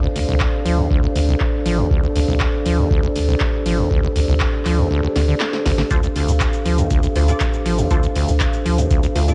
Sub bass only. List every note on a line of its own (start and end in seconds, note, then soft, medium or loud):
0.16 0.24 D2 medium
0.28 0.46 D2 medium
0.66 0.83 D2 medium
1.16 1.33 D2 medium
1.66 1.83 A1 medium
2.16 2.24 D2 loud
2.28 2.46 D2 medium
2.66 2.83 D2 medium
3.16 3.33 D2 medium
3.66 3.83 A1 medium
4.16 4.24 D2 medium
4.28 4.46 D2 medium
4.66 4.83 D2 medium
5.16 5.33 D2 medium
5.66 5.83 A1 loud
6.16 6.24 D2 medium
6.28 6.46 D2 medium
6.66 6.83 D2 medium
7.16 7.33 D2 medium
7.66 7.83 A1 loud
8.16 8.24 D2 loud
8.28 8.46 D2 medium
8.66 8.83 D2 medium
9.16 9.33 D2 medium